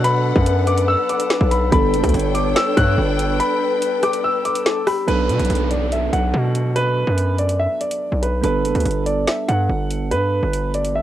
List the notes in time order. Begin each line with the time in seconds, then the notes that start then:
Already playing: B2 F#3 B3 D4 A4 B4 F#5
0.04 B4 B5, closed hi-hat
0.36 F#2, kick
0.46 closed hi-hat
0.67 D6, closed hi-hat
0.78 closed hi-hat
0.88 E6
1.09 D6, closed hi-hat
1.20 closed hi-hat
1.30 snare
1.41 B1, kick
1.51 B5, closed hi-hat
1.70 G1 G3 B3 D4 A4 B4 G5 B5, kick, closed hi-hat
1.93 F#1, closed hi-hat
2.04 D2, kick, closed hi-hat
2.09 closed hi-hat
2.14 G1 C#5, closed hi-hat
2.19 closed hi-hat
2.35 D6, closed hi-hat
2.56 E6, snare, closed hi-hat
2.77 G2 F#6, kick, closed hi-hat
2.98 G1
3.19 closed hi-hat
3.40 B4 B5, closed hi-hat
3.82 closed hi-hat
4.03 D6, cross-stick, closed hi-hat
4.13 closed hi-hat
4.24 E6
4.45 D6, closed hi-hat
4.55 closed hi-hat
4.66 A4, snare
4.87 G4 B5, cross-stick, open hi-hat
5.07 B1 F#3 B3 D4 A4 B4, closed hi-hat, downlifter
5.29 B2, closed hi-hat
5.39 B1, closed hi-hat
5.45 closed hi-hat
5.50 B1, closed hi-hat
5.55 closed hi-hat
5.71 D5, closed hi-hat
5.92 E5, closed hi-hat
6.13 B1 F#5, closed hi-hat
6.34 B2
6.55 closed hi-hat
6.76 B4, closed hi-hat
7.07 F#2
7.18 closed hi-hat
7.38 D5, closed hi-hat
7.49 closed hi-hat
7.60 E5
7.81 D5, closed hi-hat
7.91 closed hi-hat
8.12 B1
8.23 B4, closed hi-hat
8.41 G1 G3 B3 D4 A4 B4, closed hi-hat
8.64 F#1, closed hi-hat
8.75 D2, closed hi-hat
8.80 closed hi-hat
8.85 G1, closed hi-hat
8.91 closed hi-hat
9.06 D5, closed hi-hat
9.27 E5, snare, closed hi-hat
9.48 G2 F#5, closed hi-hat
9.69 G1
9.90 closed hi-hat
10.11 G2 B4, closed hi-hat, riser
10.43 G1
10.53 closed hi-hat
10.74 D5, closed hi-hat
10.85 closed hi-hat
10.96 E5